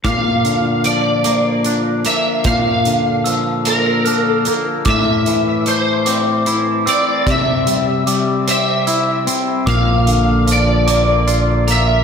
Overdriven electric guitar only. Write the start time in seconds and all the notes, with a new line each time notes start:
0.05 F5
0.85 D5
2.06 E5
2.47 F5
3.67 A#4
4.25 A4
4.89 E5
5.68 C5
6.89 D5
7.30 E5
8.51 E5
9.69 F5
10.52 D5
11.71 E5